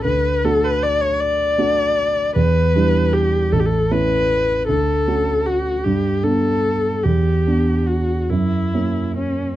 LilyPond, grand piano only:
\new Staff \with { instrumentName = "Grand piano" } { \time 6/8 \key d \major \tempo 4. = 51 d,8 <a d' fis'>4. <a d' fis'>4 | e,8 <g d' e'>4 a,,8 <a cis' e'>4 | d,8 <a cis' fis'>4 g,8 <b d'>4 | e,8 <b d'>4 fis,8 <fis ais cis'>4 | }